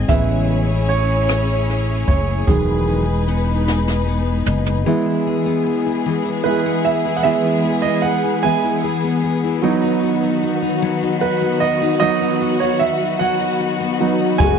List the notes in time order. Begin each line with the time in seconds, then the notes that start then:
Already playing: G#3 C4 G#4
0.08 A1 C#3 E3 G#3 B3 C#4 E4 G#4 C#5 E5, kick, closed hi-hat
0.49 C#4, closed hi-hat
0.89 A3 C#5, closed hi-hat
1.28 C#4, cross-stick, closed hi-hat
1.69 A3, cross-stick, closed hi-hat
2.08 F#1 C#4 C#5, kick, closed hi-hat
2.47 E1 D#3 E3 F#3 G#3 D#4 G#4 B4, kick, closed hi-hat
2.87 D#4, closed hi-hat
3.28 B3, closed hi-hat
3.67 D#4, snare
3.88 snare
4.07 B3
4.46 F#1 D#4, mid tom
4.66 floor tom
4.86 E3 G#3 B3 E4 G#4
5.06 E4
5.26 G#4
5.46 B3
5.66 G#4
5.86 E4
6.06 E3
6.26 E4
6.44 G#3 B3 E4 G#4 B4
6.66 B3
6.85 G#4 E5
7.05 E4
7.17 F#5
7.23 E3 G#3 B3 E4 E5
7.45 E4
7.65 G#4
7.82 B3 D#5
8.02 G#4 F#5
8.24 E4
8.43 E3 G#3 B3 E4 G#5
8.64 E4
8.84 G#4
9.04 B3
9.24 G#4
9.44 E4
9.62 D#3 F#3 B3 D#4 F#4
9.84 D#4
10.03 F#4
10.23 B3
10.43 F#4
10.62 D#4
10.82 F#3
11.03 D#4
11.21 F#4 B4
11.42 B3
11.60 F#4 D#5
11.82 D#4
12.00 F#3 B3 D#4 D#5
12.21 D#4
12.42 F#4
12.60 B3 C#5
12.79 F#4 E5
13.01 D#4
13.19 F#3 F#5
13.40 D#4
13.60 F#4
13.80 B3
14.00 F#3 B3 D#4 F#4
14.20 D#4
14.38 F#1 C#3 F#3 G#3 A3 F#4 G#4 G#5, kick, closed hi-hat